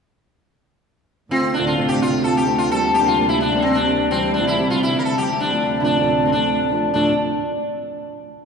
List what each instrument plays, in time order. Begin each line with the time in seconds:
1.29 string section D2 C3, steel-string acoustic guitar D3 A3 C4 F4, sitar C4
1.54 sitar D4
1.59 steel-string acoustic guitar D2 A2 D3 A3 C4 F4
1.67 sitar F4
1.77 steel-string acoustic guitar D2 A2 D3 A3 C4 F4
1.88 sitar G4
2.02 sitar F4
2.12 steel-string acoustic guitar D3 A3 C4 F4
2.24 sitar A4
2.37 sitar G4
2.47 steel-string acoustic guitar D3 A3 C4 F4
2.58 sitar F4
2.71 steel-string acoustic guitar G3 A#3 D4 G4, sitar A4
2.94 sitar G4
3.01 steel-string acoustic guitar G3 A#3 D4 G4
3.07 sitar F4
3.17 steel-string acoustic guitar G3 A#3 D4 G4
3.29 sitar E4
3.41 sitar D4
3.52 steel-string acoustic guitar A#3 D4 G4
3.57 sitar D4
3.62 sitar C4
3.69 sitar C4
3.75 sitar D4
3.88 steel-string acoustic guitar A#3 D4 G4
4.11 steel-string acoustic guitar E3 G3 C4, sitar C4
4.15 steel-string acoustic guitar E4
4.34 sitar D4
4.41 steel-string acoustic guitar C3 E3 G3 C4 E4
4.47 sitar E4
4.58 steel-string acoustic guitar C3 E3 G3 C4 E4
4.70 sitar F4
4.83 sitar E4
4.93 steel-string acoustic guitar G3 C4 E4
4.99 sitar A#4
5.05 sitar A4
5.18 sitar G4
5.29 steel-string acoustic guitar G3 C4 E4
5.40 sitar D4
5.53 steel-string acoustic guitar F3 A3 C4 D4
5.80 steel-string acoustic guitar D2 F3 A3 C4 D4, sitar E4
5.84 steel-string acoustic guitar A2, sitar D4
6.00 steel-string acoustic guitar D2 A2 F3 A3 C4 D4
6.25 sitar C4
6.32 steel-string acoustic guitar C4 D4, sitar D4
6.37 steel-string acoustic guitar F3 A3
6.71 steel-string acoustic guitar F3 A3 C4 D4
6.93 steel-string acoustic guitar D2 A2 F3 A3 C4 D4, sitar D4